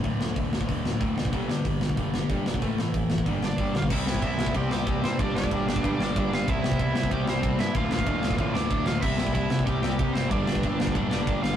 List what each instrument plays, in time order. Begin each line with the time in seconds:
0.04 picked electric bass D1, overdriven electric guitar D2 A2, distorted electric guitar D3, kick, open hi-hat
0.19 overdriven electric guitar D2 A2, picked electric bass D2, snare
0.36 picked electric bass D1, overdriven electric guitar D2 A2, kick, open hi-hat
0.51 overdriven electric guitar D2 A2, snare
0.61 kick
0.68 picked electric bass D1, overdriven electric guitar D2 A2, distorted electric guitar D3, kick, open hi-hat
0.84 overdriven electric guitar D2 A2, snare
1.00 picked electric bass D1, overdriven electric guitar D2 A2 D3, kick, open hi-hat
1.17 picked electric bass D1, overdriven electric guitar D2 A2, snare
1.25 kick
1.32 picked electric bass G1, overdriven electric guitar G2 D3 G3, kick, open hi-hat
1.49 overdriven electric guitar G2 D3, picked electric bass G2, snare
1.64 picked electric bass G1, overdriven electric guitar G2 D3, kick, open hi-hat
1.81 overdriven electric guitar G2 D3, snare
1.89 kick
1.96 picked electric bass G1, overdriven electric guitar G2 D3, distorted electric guitar G3, kick, open hi-hat
2.12 overdriven electric guitar G2 D3, snare
2.28 picked electric bass G1, overdriven electric guitar G2 D3 G3, kick, open hi-hat
2.32 overdriven electric guitar D3 G3
2.45 picked electric bass G1, overdriven electric guitar G2 D3, snare
2.54 kick
2.61 picked electric bass A1, overdriven electric guitar A2 E3 A3, kick, open hi-hat
2.65 overdriven electric guitar A2
2.77 overdriven electric guitar A2 E3, picked electric bass A2, snare
2.93 picked electric bass F1, overdriven electric guitar A2 E3, kick, open hi-hat
3.10 overdriven electric guitar A2 E3, snare
3.18 kick
3.26 picked electric bass G1, overdriven electric guitar G2 D3 G3, kick, open hi-hat
3.43 overdriven electric guitar G2 D3, lead electric guitar D4, snare
3.47 lead electric guitar D5
3.58 picked electric bass G1, overdriven electric guitar G2 D3 G3, kick, open hi-hat
3.74 picked electric bass B1, overdriven electric guitar G2 D3, lead electric guitar F4, snare
3.78 lead electric guitar F5
3.82 kick
3.90 picked electric bass C2, overdriven electric guitar C3 G3 C4, lead electric guitar E4, kick, crash
3.95 lead electric guitar E5
4.05 picked electric bass C2, overdriven electric guitar C3 G3 C4, snare
4.14 kick
4.21 picked electric bass C2, overdriven electric guitar C3 G3 C4, lead electric guitar E4, kick, ride
4.27 lead electric guitar E5
4.37 picked electric bass C2, overdriven electric guitar C3 G3 C4, snare
4.46 kick
4.54 picked electric bass C2, overdriven electric guitar C3 G3 C4, lead electric guitar G4, kick, ride
4.58 lead electric guitar G5
4.70 picked electric bass C2, overdriven electric guitar C3 G3 C4, lead electric guitar G4 G5, snare
4.87 picked electric bass C2, overdriven electric guitar C3 G3 C4, kick, ride
5.03 picked electric bass G2, overdriven electric guitar C3 G3 C4, lead electric guitar C4 C5, snare
5.19 picked electric bass G1, overdriven electric guitar G2 D3 G3, lead electric guitar D4 D5, kick, ride
5.34 picked electric bass G1, overdriven electric guitar G2 D3 G3, lead electric guitar D4 D5, snare
5.44 kick
5.51 picked electric bass G1, overdriven electric guitar G2 D3 G3, kick, ride
5.66 picked electric bass G1, overdriven electric guitar G2 D3 G3, snare
5.76 kick
5.84 picked electric bass D1, overdriven electric guitar G2 D3 G3, kick, ride
5.98 picked electric bass G1, overdriven electric guitar G2 D3 G3, snare
6.02 lead electric guitar D4 D5
6.16 picked electric bass G1, overdriven electric guitar G2 D3 G3, kick, ride
6.31 picked electric bass G1, overdriven electric guitar G2 D3 G3, lead electric guitar F4 F5, snare
6.48 picked electric bass C2, overdriven electric guitar C3 G3 C4, lead electric guitar E4 E5, kick, ride
6.62 picked electric bass C2, overdriven electric guitar C3 G3 C4, snare
6.72 kick
6.79 picked electric bass C2, overdriven electric guitar C3 G3 C4, lead electric guitar E4 E5, kick, ride
6.95 picked electric bass C2, overdriven electric guitar C3 G3 C4, snare
7.03 kick
7.11 picked electric bass C2, overdriven electric guitar C3 G3 C4, lead electric guitar G4 G5, kick, ride
7.27 picked electric bass C2, overdriven electric guitar C3 G3 C4, lead electric guitar C4 C5, snare
7.43 picked electric bass C2, overdriven electric guitar C3 G3 C4, kick, ride
7.59 picked electric bass G2, overdriven electric guitar C3 G3 C4, lead electric guitar E4 E5, snare
7.75 picked electric bass D1, overdriven electric guitar D2 A2 D3, lead electric guitar F4 F5, kick, ride
7.90 picked electric bass D1, overdriven electric guitar D2 A2 D3, lead electric guitar F4 F5, snare
7.99 kick
8.06 picked electric bass D1, overdriven electric guitar D2 A2 D3, kick, ride
8.22 picked electric bass D1, overdriven electric guitar D2 A2 D3, snare
8.30 kick
8.38 picked electric bass A1, overdriven electric guitar D2 A2 D3, kick, ride
8.54 picked electric bass D1, overdriven electric guitar D2 A2 D3, lead electric guitar D4 D5, snare
8.71 picked electric bass D1, overdriven electric guitar D2 A2 D3, kick, ride
8.86 picked electric bass D1, overdriven electric guitar D2 A2 D3, lead electric guitar F4 F5, snare
9.01 picked electric bass C2, overdriven electric guitar C3 G3 C4, lead electric guitar E4 E5, kick, crash
9.18 picked electric bass C2, overdriven electric guitar C3 G3 C4, snare
9.27 kick
9.34 picked electric bass C2, overdriven electric guitar C3 G3 C4, lead electric guitar E4 E5, kick, ride
9.50 picked electric bass C2, overdriven electric guitar C3 G3 C4, snare
9.59 kick
9.67 picked electric bass C2, overdriven electric guitar C3 G3 C4, lead electric guitar G4 G5, kick, ride
9.82 picked electric bass C2, overdriven electric guitar C3 G3 C4, lead electric guitar G4 G5, snare
9.99 picked electric bass C2, overdriven electric guitar C3 G3 C4, kick, ride
10.13 picked electric bass G1, overdriven electric guitar C3 G3 C4, lead electric guitar C4 C5, snare
10.30 picked electric bass G1, overdriven electric guitar G2 D3 G3, lead electric guitar D4 D5, kick, ride
10.45 picked electric bass G1, overdriven electric guitar G2 D3 G3, lead electric guitar D4 D5, snare
10.55 kick
10.63 picked electric bass G1, overdriven electric guitar G2 D3 G3, kick, ride
10.80 picked electric bass G1, overdriven electric guitar G2 D3 G3, snare
10.87 kick
10.95 picked electric bass D1, overdriven electric guitar G2 D3 G3, kick, ride
11.10 picked electric bass G1, overdriven electric guitar G2 D3 G3, lead electric guitar D4 D5, snare
11.27 picked electric bass G1, overdriven electric guitar G2 D3 G3, kick, ride
11.43 picked electric bass G1, overdriven electric guitar G2 D3 G3, lead electric guitar F4 F5, snare